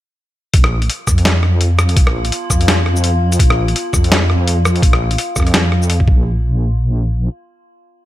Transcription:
0.54 wobble bass A#1, synth drone F4, kick, closed hi-hat
0.64 cross-stick
0.82 closed hi-hat
0.90 closed hi-hat
1.07 wobble bass F2, kick, cross-stick, shaker
1.18 closed hi-hat
1.25 snare, closed hi-hat
1.43 cross-stick
1.61 closed hi-hat
1.79 cross-stick, shaker
1.89 closed hi-hat
1.96 wobble bass A#1, kick, closed hi-hat
2.07 cross-stick
2.25 closed hi-hat
2.32 closed hi-hat
2.50 wobble bass F2, kick, cross-stick, shaker
2.61 closed hi-hat
2.68 snare, closed hi-hat
2.86 cross-stick
2.96 shaker
3.04 closed hi-hat
3.32 closed hi-hat, shaker
3.40 wobble bass A#1, kick, closed hi-hat
3.50 cross-stick
3.68 closed hi-hat
3.76 closed hi-hat
3.93 wobble bass F2, kick, cross-stick, shaker
4.04 closed hi-hat
4.12 snare, closed hi-hat
4.30 cross-stick
4.48 closed hi-hat
4.65 cross-stick, shaker
4.76 closed hi-hat
4.83 wobble bass A#1, kick, closed hi-hat
4.93 cross-stick
5.11 closed hi-hat
5.18 closed hi-hat
5.36 wobble bass F2, kick, cross-stick, shaker
5.40 cross-stick
5.42 cross-stick
5.47 cross-stick, closed hi-hat
5.52 cross-stick, snare, closed hi-hat
5.72 cross-stick
5.82 shaker
5.90 closed hi-hat
6.00 kick
6.08 wobble bass A#1, kick

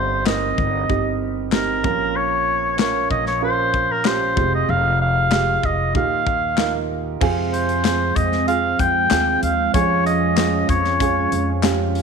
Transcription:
Already playing: upright bass G1, grand piano G2 G3 C4 D#4 G4, oboe C5
0.25 grand piano C4 D#4 A#4, oboe D#5, snare, clap
0.58 upright bass G1, kick
0.89 upright bass G1, grand piano C4 D#4 G4, kick
1.52 grand piano C4 D#4 G4, oboe A#4, snare, clap
1.84 upright bass A#1, grand piano A#2 F3 C#4 F4 A#4, kick
2.16 oboe C#5
2.78 grand piano C#4 F4 A#4, oboe C#5, snare, clap
3.11 upright bass A#1, oboe D#5, kick
3.26 oboe C#5, snare
3.41 grand piano C#4 F4 A#4, oboe C5
3.74 kick
3.91 oboe A#4
4.04 grand piano C#4 F4 G4, oboe C5, snare, clap
4.36 upright bass F1, grand piano C3 G#3 F4 G4, kick
4.55 oboe D#5
4.69 upright bass F1, oboe F5
5.01 oboe F5
5.31 grand piano G#3 F4 G4, snare, clap
5.63 upright bass F1, oboe D#5, kick
5.94 upright bass D#2, grand piano A#2 D#4 F4 G4, oboe F5, kick
6.27 kick
6.57 grand piano D#4 F4 A#4, snare, clap
7.21 upright bass F2, grand piano C3 C4 F4 G#4, analog synth pad F3 G#3 C4, kick, crash
7.53 oboe C5, closed hi-hat
7.69 closed hi-hat
7.84 grand piano C4 F4 G#4, snare, clap, closed hi-hat
8.16 upright bass F2, oboe D#5, kick, closed hi-hat
8.32 snare
8.47 grand piano C4 F4 G#4, oboe F5, closed hi-hat
8.79 upright bass F2, oboe G5, kick, closed hi-hat
9.10 upright bass D#2, grand piano C4 F4 G#4, snare, clap, closed hi-hat
9.42 upright bass D#2, oboe F5, closed hi-hat
9.74 upright bass F2, grand piano F3 C#4 F4 G#4, analog synth pad C#4, oboe C#5, kick, closed hi-hat
10.06 oboe D#5, closed hi-hat
10.37 grand piano C#4 F4 G#4, snare, clap, closed hi-hat
10.69 upright bass F2, oboe C#5, kick, closed hi-hat
10.84 snare
11.00 grand piano C#4 F4 G#4, kick, closed hi-hat
11.32 upright bass F2, closed hi-hat
11.63 grand piano C#4 F4 G4, snare, clap, closed hi-hat
11.95 open hi-hat

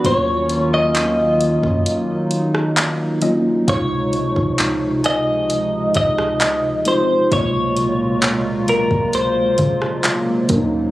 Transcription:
Already playing: synth pluck E5
0.04 808-style bass D#2, analog synth pad D#3 F#3 A#3 C#4 F4, tine electric piano F#3 A#3 C#4 F4, clean electric guitar C#5, kick, closed hi-hat
0.49 closed hi-hat
0.74 clean electric guitar D#5
0.95 clap, closed hi-hat
1.41 closed hi-hat
1.63 808-style bass F#2, kick
1.86 analog synth pad D#4, closed hi-hat
2.31 closed hi-hat
2.55 cross-stick
2.77 clap, closed hi-hat
3.22 tine electric piano F#3 A#3 C#4 F4, synth pluck D#5, closed hi-hat
3.67 808-style bass C#2, tine electric piano C3 G#3 D#4 F4, analog synth pad C3 F3 G#3, clean electric guitar C#5, synth pluck F5, kick, closed hi-hat
4.13 closed hi-hat
4.36 808-style bass C#2, kick
4.58 clap, closed hi-hat
5.04 clean electric guitar D#5, synth pluck G#5, closed hi-hat
5.50 closed hi-hat
5.94 808-style bass C#2, clean electric guitar D#5, kick, closed hi-hat
6.18 cross-stick
6.41 clap, closed hi-hat
6.85 tine electric piano G#3 C4 D#4 F4, clean electric guitar C5, closed hi-hat
7.31 808-style bass C#2, analog synth pad A#2 F#3 G#3 A#3 F4, tine electric piano C3 G#3 A#3 F4, clean electric guitar C#5, synth pluck D#5, kick, closed hi-hat
7.77 closed hi-hat
8.22 clap, closed hi-hat
8.68 clean electric guitar A#4, closed hi-hat
8.91 808-style bass C#2, kick
9.13 clean electric guitar C5, closed hi-hat
9.58 808-style bass C#3, kick, closed hi-hat
9.82 cross-stick
10.04 clap, closed hi-hat
10.49 808-style bass D#2, analog synth pad B2 C#3 D#4, tine electric piano F#3 A#3 C#4 D4, synth pluck A#4, kick, closed hi-hat
10.58 tine electric piano D#4

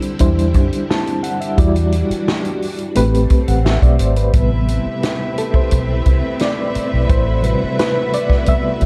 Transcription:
Already playing: string machine D3 G3 C4 E4, reed electric piano G3 D4 E4 C5
0.02 closed hi-hat
0.19 fingered electric bass E2, reed electric piano G3 D4 E4 C5, kick, closed hi-hat
0.39 closed hi-hat
0.54 fingered electric bass F#2, kick, closed hi-hat
0.72 closed hi-hat
0.90 reed electric piano A5, snare
1.07 closed hi-hat
1.23 reed electric piano F#5, closed hi-hat
1.41 reed electric piano E5, closed hi-hat
1.58 fingered electric bass E2, string machine E3 D4 F#4, reed electric piano G3 E4 F#4 D5, kick, closed hi-hat
1.76 closed hi-hat
1.92 closed hi-hat
2.10 muted fingered electric bass stroke, closed hi-hat
2.28 snare
2.45 closed hi-hat
2.62 open hi-hat
2.78 closed hi-hat
2.95 fingered electric bass A1, string machine A3 C4, reed electric piano A3 C4 G4 B4, closed hi-hat
3.14 closed hi-hat
3.30 muted fingered electric bass stroke, kick, closed hi-hat
3.48 fingered electric bass A1, reed electric piano F#5, closed hi-hat
3.65 reed electric piano E5, snare
3.82 fingered electric bass B1, reed electric piano D5, kick, closed hi-hat
3.99 fingered electric bass G#1, reed electric piano C5, closed hi-hat
4.16 reed electric piano B4, closed hi-hat
4.33 fingered electric bass A1, reed electric piano C3 G3 B3, string machine A3 E4 G4, string section C4 B4 E5, kick, closed hi-hat
4.68 closed hi-hat
4.86 muted fingered electric bass stroke
5.03 snare, closed hi-hat
5.38 reed electric piano A4, closed hi-hat
5.54 reed electric piano C5, kick
5.71 fingered electric bass B1, kick, closed hi-hat
6.06 fingered electric bass C2, kick, closed hi-hat
6.39 reed electric piano D5, snare, closed hi-hat
6.75 muted fingered electric bass stroke, closed hi-hat
6.94 fingered electric bass B1
7.08 fingered electric bass A1, string machine F#4, reed electric piano C5, kick, closed hi-hat
7.43 reed electric piano C3 G3 B4, closed hi-hat
7.63 muted fingered electric bass stroke
7.79 reed electric piano B4, snare, closed hi-hat
8.13 reed electric piano D5, closed hi-hat
8.30 kick, snare
8.46 reed electric piano C3 G3 B3 E5, kick, closed hi-hat
8.81 fingered electric bass A1, kick, closed hi-hat

